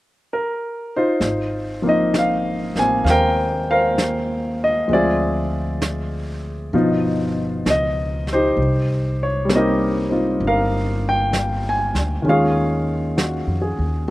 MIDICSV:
0, 0, Header, 1, 4, 480
1, 0, Start_track
1, 0, Key_signature, -4, "major"
1, 0, Tempo, 920245
1, 632, Time_signature, 4, 2, 24, 8
1, 7356, End_track
2, 0, Start_track
2, 0, Title_t, "Grand piano"
2, 0, Program_c, 0, 0
2, 173, Note_on_c, 0, 70, 63
2, 495, Note_off_c, 0, 70, 0
2, 503, Note_on_c, 0, 72, 64
2, 504, Note_on_c, 0, 63, 49
2, 509, Note_on_c, 0, 65, 47
2, 724, Control_c, 0, 64, 127
2, 950, Note_on_c, 0, 53, 39
2, 956, Note_on_c, 0, 58, 36
2, 968, Note_off_c, 0, 63, 0
2, 969, Note_on_c, 0, 60, 35
2, 976, Note_on_c, 0, 63, 46
2, 984, Note_off_c, 0, 72, 0
2, 985, Note_on_c, 0, 75, 69
2, 1132, Note_off_c, 0, 75, 0
2, 1140, Note_on_c, 0, 77, 72
2, 1430, Note_off_c, 0, 77, 0
2, 1433, Note_off_c, 0, 65, 0
2, 1435, Note_off_c, 0, 58, 0
2, 1443, Note_on_c, 0, 58, 35
2, 1446, Note_off_c, 0, 60, 0
2, 1454, Note_on_c, 0, 60, 39
2, 1457, Note_on_c, 0, 80, 73
2, 1571, Note_off_c, 0, 80, 0
2, 1589, Note_on_c, 0, 77, 56
2, 1603, Note_off_c, 0, 77, 0
2, 1617, Note_on_c, 0, 72, 59
2, 1619, Note_on_c, 0, 79, 80
2, 1620, Note_on_c, 0, 70, 61
2, 1909, Note_off_c, 0, 79, 0
2, 1928, Note_off_c, 0, 72, 0
2, 1930, Note_off_c, 0, 70, 0
2, 1934, Note_on_c, 0, 77, 82
2, 1936, Note_on_c, 0, 72, 57
2, 1938, Note_on_c, 0, 70, 56
2, 2420, Note_off_c, 0, 77, 0
2, 2420, Note_on_c, 0, 75, 71
2, 2536, Note_off_c, 0, 53, 0
2, 2542, Note_off_c, 0, 72, 0
2, 2544, Note_off_c, 0, 70, 0
2, 2544, Note_on_c, 0, 53, 41
2, 2553, Note_on_c, 0, 56, 36
2, 2555, Note_off_c, 0, 60, 0
2, 2557, Note_off_c, 0, 58, 0
2, 2562, Control_c, 0, 64, 0
2, 2563, Note_on_c, 0, 60, 37
2, 2564, Note_off_c, 0, 63, 0
2, 2570, Note_off_c, 0, 75, 0
2, 2570, Note_on_c, 0, 76, 46
2, 2573, Note_on_c, 0, 74, 69
2, 2578, Note_on_c, 0, 65, 48
2, 2579, Note_on_c, 0, 68, 49
2, 2644, Control_c, 0, 64, 127
2, 3022, Note_off_c, 0, 74, 0
2, 3505, Note_off_c, 0, 65, 0
2, 3505, Note_off_c, 0, 68, 0
2, 3506, Note_off_c, 0, 53, 0
2, 3513, Note_off_c, 0, 56, 0
2, 3513, Note_on_c, 0, 47, 47
2, 3514, Note_on_c, 0, 53, 50
2, 3515, Note_on_c, 0, 65, 45
2, 3518, Note_off_c, 0, 60, 0
2, 3520, Control_c, 0, 64, 0
2, 3522, Note_off_c, 0, 76, 0
2, 3522, Note_on_c, 0, 63, 51
2, 3602, Control_c, 0, 64, 127
2, 4017, Note_on_c, 0, 75, 68
2, 4337, Note_off_c, 0, 75, 0
2, 4344, Note_on_c, 0, 72, 79
2, 4345, Note_off_c, 0, 63, 0
2, 4349, Note_on_c, 0, 67, 47
2, 4353, Note_on_c, 0, 63, 50
2, 4472, Note_off_c, 0, 47, 0
2, 4472, Note_off_c, 0, 53, 0
2, 4473, Note_off_c, 0, 65, 0
2, 4480, Control_c, 0, 64, 0
2, 4580, Control_c, 0, 64, 127
2, 4814, Note_on_c, 0, 73, 63
2, 4823, Note_off_c, 0, 72, 0
2, 4929, Note_on_c, 0, 55, 44
2, 4951, Note_on_c, 0, 58, 39
2, 4965, Note_off_c, 0, 73, 0
2, 4970, Note_on_c, 0, 60, 43
2, 4977, Note_off_c, 0, 63, 0
2, 4983, Note_on_c, 0, 75, 64
2, 4984, Note_off_c, 0, 67, 0
2, 4985, Note_on_c, 0, 63, 51
2, 4988, Note_on_c, 0, 70, 47
2, 4992, Note_on_c, 0, 67, 47
2, 5257, Note_off_c, 0, 60, 0
2, 5264, Note_on_c, 0, 60, 35
2, 5267, Note_off_c, 0, 63, 0
2, 5274, Note_on_c, 0, 63, 32
2, 5279, Note_on_c, 0, 65, 40
2, 5426, Note_off_c, 0, 75, 0
2, 5457, Note_off_c, 0, 70, 0
2, 5463, Note_on_c, 0, 77, 74
2, 5464, Note_on_c, 0, 70, 54
2, 5745, Note_off_c, 0, 77, 0
2, 5783, Note_on_c, 0, 79, 70
2, 5909, Note_off_c, 0, 67, 0
2, 6066, Note_off_c, 0, 79, 0
2, 6098, Note_on_c, 0, 80, 67
2, 6375, Note_on_c, 0, 51, 42
2, 6379, Note_off_c, 0, 55, 0
2, 6385, Note_off_c, 0, 60, 0
2, 6386, Note_off_c, 0, 70, 0
2, 6387, Note_on_c, 0, 56, 38
2, 6389, Note_off_c, 0, 58, 0
2, 6390, Note_off_c, 0, 63, 0
2, 6392, Note_off_c, 0, 65, 0
2, 6393, Note_on_c, 0, 61, 37
2, 6397, Control_c, 0, 64, 0
2, 6406, Note_on_c, 0, 65, 47
2, 6412, Note_on_c, 0, 77, 72
2, 6413, Note_off_c, 0, 80, 0
2, 6416, Note_on_c, 0, 68, 52
2, 6417, Note_on_c, 0, 73, 51
2, 6483, Control_c, 0, 64, 127
2, 6871, Note_on_c, 0, 66, 37
2, 7094, Note_off_c, 0, 68, 0
2, 7102, Note_on_c, 0, 68, 37
2, 7251, Note_off_c, 0, 66, 0
2, 7342, Note_off_c, 0, 51, 0
2, 7342, Note_off_c, 0, 73, 0
2, 7348, Note_off_c, 0, 56, 0
2, 7351, Note_off_c, 0, 61, 0
2, 7356, Note_off_c, 0, 65, 0
2, 7356, Note_off_c, 0, 68, 0
2, 7356, Note_off_c, 0, 77, 0
2, 7356, End_track
3, 0, Start_track
3, 0, Title_t, "Upright bass"
3, 0, Program_c, 1, 32
3, 628, Note_on_c, 1, 32, 68
3, 1415, Note_off_c, 1, 32, 0
3, 1432, Note_on_c, 1, 33, 52
3, 1580, Note_off_c, 1, 33, 0
3, 1586, Note_on_c, 1, 39, 70
3, 2530, Note_off_c, 1, 39, 0
3, 2549, Note_on_c, 1, 38, 66
3, 3490, Note_off_c, 1, 38, 0
3, 3511, Note_on_c, 1, 31, 66
3, 3971, Note_off_c, 1, 31, 0
3, 3992, Note_on_c, 1, 37, 58
3, 4451, Note_off_c, 1, 37, 0
3, 4468, Note_on_c, 1, 36, 66
3, 5408, Note_off_c, 1, 36, 0
3, 5426, Note_on_c, 1, 31, 71
3, 6210, Note_off_c, 1, 31, 0
3, 6231, Note_on_c, 1, 38, 54
3, 6377, Note_off_c, 1, 38, 0
3, 6388, Note_on_c, 1, 39, 66
3, 7007, Note_off_c, 1, 39, 0
3, 7026, Note_on_c, 1, 41, 51
3, 7176, Note_off_c, 1, 41, 0
3, 7190, Note_on_c, 1, 39, 53
3, 7339, Note_off_c, 1, 39, 0
3, 7356, End_track
4, 0, Start_track
4, 0, Title_t, "Drums"
4, 630, Note_on_c, 9, 25, 29
4, 630, Note_on_c, 9, 38, 24
4, 682, Note_off_c, 9, 38, 0
4, 1116, Note_off_c, 9, 25, 0
4, 1116, Note_on_c, 9, 25, 31
4, 1116, Note_on_c, 9, 38, 37
4, 1116, Note_on_c, 9, 44, 46
4, 1168, Note_off_c, 9, 38, 0
4, 1168, Note_off_c, 9, 44, 0
4, 1437, Note_on_c, 9, 38, 23
4, 1490, Note_off_c, 9, 38, 0
4, 1597, Note_off_c, 9, 25, 0
4, 1597, Note_on_c, 9, 25, 33
4, 1597, Note_on_c, 9, 38, 25
4, 1649, Note_off_c, 9, 38, 0
4, 2077, Note_off_c, 9, 25, 0
4, 2077, Note_on_c, 9, 25, 31
4, 2077, Note_on_c, 9, 38, 38
4, 2077, Note_on_c, 9, 44, 43
4, 2129, Note_off_c, 9, 38, 0
4, 2129, Note_off_c, 9, 44, 0
4, 2553, Note_off_c, 9, 25, 0
4, 2553, Note_on_c, 9, 25, 29
4, 3034, Note_off_c, 9, 25, 0
4, 3034, Note_on_c, 9, 25, 34
4, 3034, Note_on_c, 9, 38, 38
4, 3034, Note_on_c, 9, 44, 51
4, 3086, Note_off_c, 9, 38, 0
4, 3086, Note_off_c, 9, 44, 0
4, 3514, Note_off_c, 9, 25, 0
4, 3514, Note_on_c, 9, 25, 31
4, 3996, Note_off_c, 9, 25, 0
4, 3996, Note_on_c, 9, 25, 27
4, 3996, Note_on_c, 9, 38, 35
4, 3996, Note_on_c, 9, 44, 39
4, 4048, Note_off_c, 9, 38, 0
4, 4048, Note_off_c, 9, 44, 0
4, 4314, Note_on_c, 9, 38, 24
4, 4366, Note_off_c, 9, 38, 0
4, 4472, Note_off_c, 9, 25, 0
4, 4472, Note_on_c, 9, 25, 33
4, 4952, Note_off_c, 9, 25, 0
4, 4952, Note_on_c, 9, 25, 28
4, 4952, Note_on_c, 9, 38, 38
4, 4952, Note_on_c, 9, 44, 49
4, 5004, Note_off_c, 9, 38, 0
4, 5004, Note_off_c, 9, 44, 0
4, 5426, Note_off_c, 9, 25, 0
4, 5426, Note_on_c, 9, 25, 35
4, 5910, Note_off_c, 9, 25, 0
4, 5910, Note_on_c, 9, 25, 30
4, 5910, Note_on_c, 9, 38, 37
4, 5910, Note_on_c, 9, 44, 50
4, 5963, Note_off_c, 9, 38, 0
4, 5963, Note_off_c, 9, 44, 0
4, 6232, Note_on_c, 9, 38, 24
4, 6284, Note_off_c, 9, 38, 0
4, 6391, Note_off_c, 9, 25, 0
4, 6391, Note_on_c, 9, 25, 33
4, 6874, Note_off_c, 9, 25, 0
4, 6874, Note_on_c, 9, 25, 31
4, 6874, Note_on_c, 9, 38, 36
4, 6874, Note_on_c, 9, 44, 44
4, 6926, Note_off_c, 9, 38, 0
4, 6926, Note_off_c, 9, 44, 0
4, 7356, Note_off_c, 9, 25, 0
4, 7356, End_track
0, 0, End_of_file